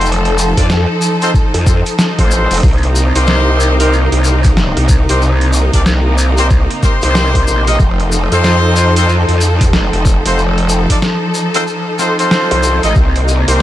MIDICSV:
0, 0, Header, 1, 5, 480
1, 0, Start_track
1, 0, Tempo, 645161
1, 40, Time_signature, 4, 2, 24, 8
1, 10134, End_track
2, 0, Start_track
2, 0, Title_t, "Horn section"
2, 0, Program_c, 0, 61
2, 427, Note_on_c, 0, 63, 93
2, 427, Note_on_c, 0, 65, 79
2, 427, Note_on_c, 0, 69, 80
2, 428, Note_on_c, 0, 62, 91
2, 428, Note_on_c, 0, 74, 98
2, 491, Note_off_c, 0, 62, 0
2, 491, Note_off_c, 0, 63, 0
2, 491, Note_off_c, 0, 65, 0
2, 491, Note_off_c, 0, 69, 0
2, 491, Note_off_c, 0, 74, 0
2, 907, Note_on_c, 0, 60, 101
2, 907, Note_on_c, 0, 72, 110
2, 908, Note_on_c, 0, 63, 106
2, 908, Note_on_c, 0, 65, 94
2, 908, Note_on_c, 0, 69, 92
2, 971, Note_off_c, 0, 60, 0
2, 971, Note_off_c, 0, 63, 0
2, 971, Note_off_c, 0, 65, 0
2, 971, Note_off_c, 0, 69, 0
2, 971, Note_off_c, 0, 72, 0
2, 1239, Note_on_c, 0, 69, 63
2, 1240, Note_on_c, 0, 60, 67
2, 1240, Note_on_c, 0, 63, 70
2, 1240, Note_on_c, 0, 65, 63
2, 1240, Note_on_c, 0, 72, 73
2, 1342, Note_off_c, 0, 60, 0
2, 1342, Note_off_c, 0, 63, 0
2, 1342, Note_off_c, 0, 65, 0
2, 1342, Note_off_c, 0, 69, 0
2, 1342, Note_off_c, 0, 72, 0
2, 1627, Note_on_c, 0, 65, 82
2, 1627, Note_on_c, 0, 69, 86
2, 1628, Note_on_c, 0, 60, 94
2, 1628, Note_on_c, 0, 63, 88
2, 1628, Note_on_c, 0, 72, 103
2, 1948, Note_off_c, 0, 69, 0
2, 1949, Note_off_c, 0, 60, 0
2, 1949, Note_off_c, 0, 63, 0
2, 1949, Note_off_c, 0, 65, 0
2, 1949, Note_off_c, 0, 72, 0
2, 2347, Note_on_c, 0, 60, 97
2, 2347, Note_on_c, 0, 72, 105
2, 2348, Note_on_c, 0, 63, 99
2, 2348, Note_on_c, 0, 67, 94
2, 2349, Note_on_c, 0, 70, 92
2, 2792, Note_off_c, 0, 60, 0
2, 2792, Note_off_c, 0, 63, 0
2, 2792, Note_off_c, 0, 72, 0
2, 2793, Note_off_c, 0, 67, 0
2, 2793, Note_off_c, 0, 70, 0
2, 2829, Note_on_c, 0, 60, 95
2, 2829, Note_on_c, 0, 63, 100
2, 2829, Note_on_c, 0, 72, 104
2, 2830, Note_on_c, 0, 67, 92
2, 2830, Note_on_c, 0, 70, 93
2, 2935, Note_off_c, 0, 60, 0
2, 2935, Note_off_c, 0, 72, 0
2, 2936, Note_off_c, 0, 63, 0
2, 2936, Note_off_c, 0, 67, 0
2, 2936, Note_off_c, 0, 70, 0
2, 3788, Note_on_c, 0, 67, 83
2, 3789, Note_on_c, 0, 60, 90
2, 3789, Note_on_c, 0, 63, 89
2, 3789, Note_on_c, 0, 70, 84
2, 3789, Note_on_c, 0, 72, 98
2, 3895, Note_off_c, 0, 60, 0
2, 3895, Note_off_c, 0, 63, 0
2, 3895, Note_off_c, 0, 67, 0
2, 3895, Note_off_c, 0, 70, 0
2, 3895, Note_off_c, 0, 72, 0
2, 4268, Note_on_c, 0, 62, 94
2, 4268, Note_on_c, 0, 74, 102
2, 4269, Note_on_c, 0, 63, 90
2, 4269, Note_on_c, 0, 67, 81
2, 4269, Note_on_c, 0, 70, 87
2, 4331, Note_off_c, 0, 62, 0
2, 4331, Note_off_c, 0, 74, 0
2, 4332, Note_off_c, 0, 63, 0
2, 4332, Note_off_c, 0, 67, 0
2, 4332, Note_off_c, 0, 70, 0
2, 4749, Note_on_c, 0, 60, 105
2, 4749, Note_on_c, 0, 63, 102
2, 4749, Note_on_c, 0, 67, 96
2, 4749, Note_on_c, 0, 72, 114
2, 4750, Note_on_c, 0, 70, 92
2, 4812, Note_off_c, 0, 60, 0
2, 4812, Note_off_c, 0, 63, 0
2, 4812, Note_off_c, 0, 67, 0
2, 4812, Note_off_c, 0, 70, 0
2, 4812, Note_off_c, 0, 72, 0
2, 5080, Note_on_c, 0, 67, 85
2, 5081, Note_on_c, 0, 60, 94
2, 5081, Note_on_c, 0, 63, 93
2, 5081, Note_on_c, 0, 70, 83
2, 5081, Note_on_c, 0, 72, 102
2, 5193, Note_off_c, 0, 60, 0
2, 5193, Note_off_c, 0, 63, 0
2, 5193, Note_off_c, 0, 67, 0
2, 5193, Note_off_c, 0, 70, 0
2, 5193, Note_off_c, 0, 72, 0
2, 5229, Note_on_c, 0, 60, 100
2, 5229, Note_on_c, 0, 70, 89
2, 5229, Note_on_c, 0, 72, 109
2, 5230, Note_on_c, 0, 63, 92
2, 5230, Note_on_c, 0, 67, 92
2, 5673, Note_off_c, 0, 60, 0
2, 5673, Note_off_c, 0, 63, 0
2, 5673, Note_off_c, 0, 67, 0
2, 5673, Note_off_c, 0, 70, 0
2, 5673, Note_off_c, 0, 72, 0
2, 5709, Note_on_c, 0, 63, 96
2, 5709, Note_on_c, 0, 67, 88
2, 5709, Note_on_c, 0, 70, 86
2, 5709, Note_on_c, 0, 75, 100
2, 5789, Note_off_c, 0, 75, 0
2, 5790, Note_off_c, 0, 63, 0
2, 5790, Note_off_c, 0, 67, 0
2, 5790, Note_off_c, 0, 70, 0
2, 6189, Note_on_c, 0, 63, 105
2, 6189, Note_on_c, 0, 69, 95
2, 6190, Note_on_c, 0, 60, 108
2, 6190, Note_on_c, 0, 65, 95
2, 6190, Note_on_c, 0, 72, 117
2, 6633, Note_off_c, 0, 60, 0
2, 6633, Note_off_c, 0, 63, 0
2, 6633, Note_off_c, 0, 65, 0
2, 6633, Note_off_c, 0, 69, 0
2, 6633, Note_off_c, 0, 72, 0
2, 6671, Note_on_c, 0, 60, 100
2, 6671, Note_on_c, 0, 65, 92
2, 6671, Note_on_c, 0, 69, 92
2, 6671, Note_on_c, 0, 72, 109
2, 6672, Note_on_c, 0, 63, 105
2, 6776, Note_off_c, 0, 65, 0
2, 6777, Note_off_c, 0, 60, 0
2, 6777, Note_off_c, 0, 63, 0
2, 6777, Note_off_c, 0, 69, 0
2, 6777, Note_off_c, 0, 72, 0
2, 7630, Note_on_c, 0, 63, 92
2, 7630, Note_on_c, 0, 65, 87
2, 7631, Note_on_c, 0, 60, 96
2, 7631, Note_on_c, 0, 69, 83
2, 7631, Note_on_c, 0, 72, 104
2, 7736, Note_off_c, 0, 60, 0
2, 7736, Note_off_c, 0, 63, 0
2, 7736, Note_off_c, 0, 65, 0
2, 7736, Note_off_c, 0, 69, 0
2, 7736, Note_off_c, 0, 72, 0
2, 8109, Note_on_c, 0, 62, 93
2, 8109, Note_on_c, 0, 63, 90
2, 8109, Note_on_c, 0, 65, 82
2, 8109, Note_on_c, 0, 74, 101
2, 8110, Note_on_c, 0, 69, 80
2, 8172, Note_off_c, 0, 62, 0
2, 8172, Note_off_c, 0, 63, 0
2, 8172, Note_off_c, 0, 65, 0
2, 8172, Note_off_c, 0, 69, 0
2, 8172, Note_off_c, 0, 74, 0
2, 8588, Note_on_c, 0, 65, 95
2, 8589, Note_on_c, 0, 60, 106
2, 8589, Note_on_c, 0, 63, 103
2, 8589, Note_on_c, 0, 69, 99
2, 8589, Note_on_c, 0, 72, 115
2, 8651, Note_off_c, 0, 65, 0
2, 8652, Note_off_c, 0, 60, 0
2, 8652, Note_off_c, 0, 63, 0
2, 8652, Note_off_c, 0, 69, 0
2, 8652, Note_off_c, 0, 72, 0
2, 8921, Note_on_c, 0, 60, 98
2, 8921, Note_on_c, 0, 63, 95
2, 8921, Note_on_c, 0, 65, 81
2, 8921, Note_on_c, 0, 69, 84
2, 8921, Note_on_c, 0, 72, 106
2, 9033, Note_off_c, 0, 60, 0
2, 9033, Note_off_c, 0, 63, 0
2, 9033, Note_off_c, 0, 65, 0
2, 9033, Note_off_c, 0, 72, 0
2, 9034, Note_off_c, 0, 69, 0
2, 9070, Note_on_c, 0, 60, 96
2, 9070, Note_on_c, 0, 72, 104
2, 9071, Note_on_c, 0, 63, 98
2, 9071, Note_on_c, 0, 65, 91
2, 9071, Note_on_c, 0, 69, 91
2, 9514, Note_off_c, 0, 60, 0
2, 9514, Note_off_c, 0, 63, 0
2, 9514, Note_off_c, 0, 65, 0
2, 9514, Note_off_c, 0, 69, 0
2, 9514, Note_off_c, 0, 72, 0
2, 9549, Note_on_c, 0, 65, 85
2, 9549, Note_on_c, 0, 75, 100
2, 9550, Note_on_c, 0, 63, 95
2, 9550, Note_on_c, 0, 69, 81
2, 9629, Note_off_c, 0, 65, 0
2, 9629, Note_off_c, 0, 75, 0
2, 9630, Note_off_c, 0, 63, 0
2, 9630, Note_off_c, 0, 69, 0
2, 10029, Note_on_c, 0, 60, 103
2, 10029, Note_on_c, 0, 63, 101
2, 10029, Note_on_c, 0, 67, 92
2, 10029, Note_on_c, 0, 72, 112
2, 10030, Note_on_c, 0, 70, 96
2, 10134, Note_off_c, 0, 60, 0
2, 10134, Note_off_c, 0, 63, 0
2, 10134, Note_off_c, 0, 67, 0
2, 10134, Note_off_c, 0, 70, 0
2, 10134, Note_off_c, 0, 72, 0
2, 10134, End_track
3, 0, Start_track
3, 0, Title_t, "String section"
3, 0, Program_c, 1, 48
3, 0, Note_on_c, 1, 53, 82
3, 0, Note_on_c, 1, 63, 78
3, 0, Note_on_c, 1, 69, 94
3, 1932, Note_off_c, 1, 53, 0
3, 1932, Note_off_c, 1, 69, 0
3, 1959, Note_on_c, 1, 48, 82
3, 1959, Note_on_c, 1, 58, 75
3, 3860, Note_off_c, 1, 58, 0
3, 3881, Note_on_c, 1, 58, 74
3, 5770, Note_off_c, 1, 48, 0
3, 5781, Note_off_c, 1, 58, 0
3, 5801, Note_on_c, 1, 69, 87
3, 5802, Note_on_c, 1, 53, 79
3, 9611, Note_off_c, 1, 53, 0
3, 9611, Note_off_c, 1, 63, 0
3, 9611, Note_off_c, 1, 69, 0
3, 9642, Note_on_c, 1, 58, 72
3, 9642, Note_on_c, 1, 63, 89
3, 9643, Note_on_c, 1, 48, 84
3, 10134, Note_off_c, 1, 48, 0
3, 10134, Note_off_c, 1, 58, 0
3, 10134, Note_off_c, 1, 63, 0
3, 10134, End_track
4, 0, Start_track
4, 0, Title_t, "Wobble bass"
4, 0, Program_c, 2, 39
4, 0, Note_on_c, 2, 29, 94
4, 405, Note_off_c, 2, 29, 0
4, 427, Note_on_c, 2, 41, 101
4, 644, Note_off_c, 2, 41, 0
4, 1148, Note_on_c, 2, 41, 102
4, 1364, Note_off_c, 2, 41, 0
4, 1627, Note_on_c, 2, 33, 98
4, 1844, Note_off_c, 2, 33, 0
4, 1867, Note_on_c, 2, 29, 97
4, 1945, Note_off_c, 2, 29, 0
4, 1960, Note_on_c, 2, 36, 97
4, 2325, Note_off_c, 2, 36, 0
4, 2348, Note_on_c, 2, 36, 92
4, 3045, Note_off_c, 2, 36, 0
4, 3068, Note_on_c, 2, 36, 101
4, 3524, Note_off_c, 2, 36, 0
4, 3548, Note_on_c, 2, 36, 94
4, 3765, Note_off_c, 2, 36, 0
4, 3789, Note_on_c, 2, 36, 93
4, 4245, Note_off_c, 2, 36, 0
4, 4269, Note_on_c, 2, 36, 96
4, 4965, Note_off_c, 2, 36, 0
4, 5229, Note_on_c, 2, 36, 92
4, 5546, Note_off_c, 2, 36, 0
4, 5562, Note_on_c, 2, 34, 96
4, 5786, Note_off_c, 2, 34, 0
4, 5801, Note_on_c, 2, 29, 94
4, 6165, Note_off_c, 2, 29, 0
4, 6190, Note_on_c, 2, 41, 102
4, 6885, Note_off_c, 2, 41, 0
4, 6910, Note_on_c, 2, 41, 100
4, 7366, Note_off_c, 2, 41, 0
4, 7390, Note_on_c, 2, 29, 98
4, 7605, Note_off_c, 2, 29, 0
4, 7631, Note_on_c, 2, 29, 95
4, 8086, Note_off_c, 2, 29, 0
4, 9310, Note_on_c, 2, 36, 95
4, 9525, Note_off_c, 2, 36, 0
4, 9550, Note_on_c, 2, 33, 95
4, 9626, Note_off_c, 2, 33, 0
4, 9642, Note_on_c, 2, 36, 94
4, 10006, Note_off_c, 2, 36, 0
4, 10029, Note_on_c, 2, 36, 98
4, 10134, Note_off_c, 2, 36, 0
4, 10134, End_track
5, 0, Start_track
5, 0, Title_t, "Drums"
5, 9, Note_on_c, 9, 42, 44
5, 42, Note_on_c, 9, 70, 41
5, 83, Note_off_c, 9, 42, 0
5, 90, Note_on_c, 9, 42, 55
5, 116, Note_off_c, 9, 70, 0
5, 164, Note_off_c, 9, 42, 0
5, 188, Note_on_c, 9, 42, 37
5, 262, Note_off_c, 9, 42, 0
5, 285, Note_on_c, 9, 70, 100
5, 359, Note_off_c, 9, 70, 0
5, 428, Note_on_c, 9, 36, 64
5, 428, Note_on_c, 9, 42, 66
5, 428, Note_on_c, 9, 70, 54
5, 502, Note_off_c, 9, 36, 0
5, 502, Note_off_c, 9, 42, 0
5, 503, Note_off_c, 9, 70, 0
5, 519, Note_on_c, 9, 38, 119
5, 519, Note_on_c, 9, 70, 36
5, 593, Note_off_c, 9, 70, 0
5, 594, Note_off_c, 9, 38, 0
5, 756, Note_on_c, 9, 70, 93
5, 831, Note_off_c, 9, 70, 0
5, 905, Note_on_c, 9, 70, 55
5, 908, Note_on_c, 9, 42, 63
5, 979, Note_off_c, 9, 70, 0
5, 982, Note_off_c, 9, 42, 0
5, 999, Note_on_c, 9, 36, 108
5, 1002, Note_on_c, 9, 70, 38
5, 1074, Note_off_c, 9, 36, 0
5, 1076, Note_off_c, 9, 70, 0
5, 1147, Note_on_c, 9, 42, 49
5, 1221, Note_off_c, 9, 42, 0
5, 1239, Note_on_c, 9, 36, 103
5, 1240, Note_on_c, 9, 37, 36
5, 1240, Note_on_c, 9, 70, 99
5, 1313, Note_off_c, 9, 36, 0
5, 1314, Note_off_c, 9, 37, 0
5, 1314, Note_off_c, 9, 70, 0
5, 1384, Note_on_c, 9, 70, 56
5, 1387, Note_on_c, 9, 42, 61
5, 1459, Note_off_c, 9, 70, 0
5, 1461, Note_off_c, 9, 42, 0
5, 1478, Note_on_c, 9, 38, 127
5, 1479, Note_on_c, 9, 70, 43
5, 1553, Note_off_c, 9, 38, 0
5, 1553, Note_off_c, 9, 70, 0
5, 1627, Note_on_c, 9, 42, 49
5, 1628, Note_on_c, 9, 36, 66
5, 1701, Note_off_c, 9, 42, 0
5, 1702, Note_off_c, 9, 36, 0
5, 1719, Note_on_c, 9, 70, 103
5, 1794, Note_off_c, 9, 70, 0
5, 1867, Note_on_c, 9, 42, 64
5, 1867, Note_on_c, 9, 70, 53
5, 1890, Note_off_c, 9, 42, 0
5, 1890, Note_on_c, 9, 42, 52
5, 1912, Note_off_c, 9, 42, 0
5, 1912, Note_on_c, 9, 42, 43
5, 1935, Note_off_c, 9, 42, 0
5, 1935, Note_on_c, 9, 42, 36
5, 1942, Note_off_c, 9, 70, 0
5, 1958, Note_off_c, 9, 42, 0
5, 1958, Note_on_c, 9, 42, 30
5, 1959, Note_on_c, 9, 70, 38
5, 1960, Note_on_c, 9, 36, 119
5, 1995, Note_off_c, 9, 42, 0
5, 1995, Note_on_c, 9, 42, 23
5, 2033, Note_off_c, 9, 42, 0
5, 2033, Note_off_c, 9, 70, 0
5, 2033, Note_on_c, 9, 42, 19
5, 2034, Note_off_c, 9, 36, 0
5, 2069, Note_off_c, 9, 42, 0
5, 2069, Note_on_c, 9, 42, 16
5, 2106, Note_off_c, 9, 42, 0
5, 2106, Note_on_c, 9, 42, 35
5, 2181, Note_off_c, 9, 42, 0
5, 2199, Note_on_c, 9, 70, 91
5, 2273, Note_off_c, 9, 70, 0
5, 2347, Note_on_c, 9, 42, 65
5, 2347, Note_on_c, 9, 70, 54
5, 2421, Note_off_c, 9, 42, 0
5, 2422, Note_off_c, 9, 70, 0
5, 2431, Note_on_c, 9, 70, 39
5, 2438, Note_on_c, 9, 38, 120
5, 2505, Note_off_c, 9, 70, 0
5, 2513, Note_off_c, 9, 38, 0
5, 2679, Note_on_c, 9, 70, 95
5, 2754, Note_off_c, 9, 70, 0
5, 2827, Note_on_c, 9, 42, 60
5, 2828, Note_on_c, 9, 70, 53
5, 2902, Note_off_c, 9, 42, 0
5, 2902, Note_off_c, 9, 70, 0
5, 2924, Note_on_c, 9, 70, 37
5, 2998, Note_off_c, 9, 70, 0
5, 3068, Note_on_c, 9, 42, 51
5, 3142, Note_off_c, 9, 42, 0
5, 3156, Note_on_c, 9, 70, 82
5, 3231, Note_off_c, 9, 70, 0
5, 3303, Note_on_c, 9, 70, 52
5, 3308, Note_on_c, 9, 37, 38
5, 3308, Note_on_c, 9, 42, 61
5, 3309, Note_on_c, 9, 36, 114
5, 3377, Note_off_c, 9, 70, 0
5, 3382, Note_off_c, 9, 37, 0
5, 3382, Note_off_c, 9, 42, 0
5, 3383, Note_off_c, 9, 36, 0
5, 3400, Note_on_c, 9, 38, 127
5, 3403, Note_on_c, 9, 70, 40
5, 3474, Note_off_c, 9, 38, 0
5, 3477, Note_off_c, 9, 70, 0
5, 3547, Note_on_c, 9, 37, 47
5, 3547, Note_on_c, 9, 42, 48
5, 3622, Note_off_c, 9, 37, 0
5, 3622, Note_off_c, 9, 42, 0
5, 3635, Note_on_c, 9, 70, 93
5, 3640, Note_on_c, 9, 36, 109
5, 3709, Note_off_c, 9, 70, 0
5, 3715, Note_off_c, 9, 36, 0
5, 3788, Note_on_c, 9, 42, 68
5, 3789, Note_on_c, 9, 70, 52
5, 3862, Note_off_c, 9, 42, 0
5, 3864, Note_off_c, 9, 70, 0
5, 3882, Note_on_c, 9, 70, 36
5, 3956, Note_off_c, 9, 70, 0
5, 4027, Note_on_c, 9, 42, 36
5, 4102, Note_off_c, 9, 42, 0
5, 4114, Note_on_c, 9, 70, 96
5, 4188, Note_off_c, 9, 70, 0
5, 4267, Note_on_c, 9, 42, 62
5, 4267, Note_on_c, 9, 70, 48
5, 4269, Note_on_c, 9, 36, 58
5, 4341, Note_off_c, 9, 70, 0
5, 4342, Note_off_c, 9, 42, 0
5, 4343, Note_off_c, 9, 36, 0
5, 4360, Note_on_c, 9, 38, 121
5, 4362, Note_on_c, 9, 70, 37
5, 4434, Note_off_c, 9, 38, 0
5, 4437, Note_off_c, 9, 70, 0
5, 4597, Note_on_c, 9, 70, 99
5, 4672, Note_off_c, 9, 70, 0
5, 4743, Note_on_c, 9, 70, 49
5, 4749, Note_on_c, 9, 42, 63
5, 4817, Note_off_c, 9, 70, 0
5, 4823, Note_off_c, 9, 42, 0
5, 4837, Note_on_c, 9, 70, 39
5, 4841, Note_on_c, 9, 36, 103
5, 4911, Note_off_c, 9, 70, 0
5, 4915, Note_off_c, 9, 36, 0
5, 4989, Note_on_c, 9, 42, 49
5, 5063, Note_off_c, 9, 42, 0
5, 5081, Note_on_c, 9, 36, 96
5, 5081, Note_on_c, 9, 37, 41
5, 5082, Note_on_c, 9, 70, 86
5, 5155, Note_off_c, 9, 36, 0
5, 5155, Note_off_c, 9, 37, 0
5, 5157, Note_off_c, 9, 70, 0
5, 5222, Note_on_c, 9, 70, 48
5, 5229, Note_on_c, 9, 42, 60
5, 5297, Note_off_c, 9, 70, 0
5, 5303, Note_off_c, 9, 42, 0
5, 5320, Note_on_c, 9, 38, 115
5, 5323, Note_on_c, 9, 70, 40
5, 5395, Note_off_c, 9, 38, 0
5, 5398, Note_off_c, 9, 70, 0
5, 5469, Note_on_c, 9, 36, 59
5, 5469, Note_on_c, 9, 42, 47
5, 5544, Note_off_c, 9, 36, 0
5, 5544, Note_off_c, 9, 42, 0
5, 5561, Note_on_c, 9, 70, 86
5, 5635, Note_off_c, 9, 70, 0
5, 5710, Note_on_c, 9, 42, 66
5, 5711, Note_on_c, 9, 70, 51
5, 5784, Note_off_c, 9, 42, 0
5, 5785, Note_off_c, 9, 70, 0
5, 5799, Note_on_c, 9, 70, 40
5, 5801, Note_on_c, 9, 36, 114
5, 5874, Note_off_c, 9, 70, 0
5, 5876, Note_off_c, 9, 36, 0
5, 5949, Note_on_c, 9, 42, 36
5, 6024, Note_off_c, 9, 42, 0
5, 6040, Note_on_c, 9, 70, 95
5, 6115, Note_off_c, 9, 70, 0
5, 6189, Note_on_c, 9, 42, 66
5, 6194, Note_on_c, 9, 70, 48
5, 6263, Note_off_c, 9, 42, 0
5, 6268, Note_off_c, 9, 70, 0
5, 6280, Note_on_c, 9, 70, 40
5, 6281, Note_on_c, 9, 38, 119
5, 6355, Note_off_c, 9, 38, 0
5, 6355, Note_off_c, 9, 70, 0
5, 6518, Note_on_c, 9, 70, 84
5, 6592, Note_off_c, 9, 70, 0
5, 6669, Note_on_c, 9, 42, 66
5, 6669, Note_on_c, 9, 70, 49
5, 6743, Note_off_c, 9, 70, 0
5, 6744, Note_off_c, 9, 42, 0
5, 6762, Note_on_c, 9, 70, 36
5, 6837, Note_off_c, 9, 70, 0
5, 6910, Note_on_c, 9, 42, 51
5, 6984, Note_off_c, 9, 42, 0
5, 7001, Note_on_c, 9, 70, 89
5, 7075, Note_off_c, 9, 70, 0
5, 7150, Note_on_c, 9, 36, 106
5, 7150, Note_on_c, 9, 37, 40
5, 7150, Note_on_c, 9, 42, 68
5, 7156, Note_on_c, 9, 70, 49
5, 7224, Note_off_c, 9, 36, 0
5, 7224, Note_off_c, 9, 37, 0
5, 7224, Note_off_c, 9, 42, 0
5, 7230, Note_off_c, 9, 70, 0
5, 7242, Note_on_c, 9, 38, 124
5, 7242, Note_on_c, 9, 70, 38
5, 7316, Note_off_c, 9, 38, 0
5, 7316, Note_off_c, 9, 70, 0
5, 7390, Note_on_c, 9, 37, 52
5, 7390, Note_on_c, 9, 42, 48
5, 7465, Note_off_c, 9, 37, 0
5, 7465, Note_off_c, 9, 42, 0
5, 7481, Note_on_c, 9, 70, 94
5, 7482, Note_on_c, 9, 36, 104
5, 7555, Note_off_c, 9, 70, 0
5, 7556, Note_off_c, 9, 36, 0
5, 7630, Note_on_c, 9, 42, 68
5, 7635, Note_on_c, 9, 70, 49
5, 7704, Note_off_c, 9, 42, 0
5, 7709, Note_off_c, 9, 70, 0
5, 7724, Note_on_c, 9, 70, 37
5, 7798, Note_off_c, 9, 70, 0
5, 7870, Note_on_c, 9, 42, 36
5, 7944, Note_off_c, 9, 42, 0
5, 7954, Note_on_c, 9, 70, 100
5, 8029, Note_off_c, 9, 70, 0
5, 8109, Note_on_c, 9, 42, 70
5, 8110, Note_on_c, 9, 36, 58
5, 8113, Note_on_c, 9, 70, 50
5, 8184, Note_off_c, 9, 36, 0
5, 8184, Note_off_c, 9, 42, 0
5, 8187, Note_off_c, 9, 70, 0
5, 8201, Note_on_c, 9, 38, 115
5, 8204, Note_on_c, 9, 70, 35
5, 8276, Note_off_c, 9, 38, 0
5, 8279, Note_off_c, 9, 70, 0
5, 8440, Note_on_c, 9, 70, 85
5, 8514, Note_off_c, 9, 70, 0
5, 8589, Note_on_c, 9, 42, 67
5, 8592, Note_on_c, 9, 70, 49
5, 8663, Note_off_c, 9, 42, 0
5, 8666, Note_off_c, 9, 70, 0
5, 8685, Note_on_c, 9, 70, 44
5, 8759, Note_off_c, 9, 70, 0
5, 8919, Note_on_c, 9, 70, 91
5, 8921, Note_on_c, 9, 37, 44
5, 8994, Note_off_c, 9, 70, 0
5, 8996, Note_off_c, 9, 37, 0
5, 9069, Note_on_c, 9, 42, 68
5, 9072, Note_on_c, 9, 70, 48
5, 9144, Note_off_c, 9, 42, 0
5, 9147, Note_off_c, 9, 70, 0
5, 9160, Note_on_c, 9, 38, 123
5, 9164, Note_on_c, 9, 70, 35
5, 9234, Note_off_c, 9, 38, 0
5, 9239, Note_off_c, 9, 70, 0
5, 9308, Note_on_c, 9, 42, 51
5, 9383, Note_off_c, 9, 42, 0
5, 9398, Note_on_c, 9, 70, 91
5, 9472, Note_off_c, 9, 70, 0
5, 9547, Note_on_c, 9, 70, 46
5, 9548, Note_on_c, 9, 42, 69
5, 9622, Note_off_c, 9, 70, 0
5, 9623, Note_off_c, 9, 42, 0
5, 9637, Note_on_c, 9, 70, 38
5, 9642, Note_on_c, 9, 36, 118
5, 9712, Note_off_c, 9, 70, 0
5, 9716, Note_off_c, 9, 36, 0
5, 9789, Note_on_c, 9, 42, 41
5, 9863, Note_off_c, 9, 42, 0
5, 9882, Note_on_c, 9, 70, 84
5, 9957, Note_off_c, 9, 70, 0
5, 10029, Note_on_c, 9, 42, 73
5, 10032, Note_on_c, 9, 70, 54
5, 10103, Note_off_c, 9, 42, 0
5, 10107, Note_off_c, 9, 70, 0
5, 10134, End_track
0, 0, End_of_file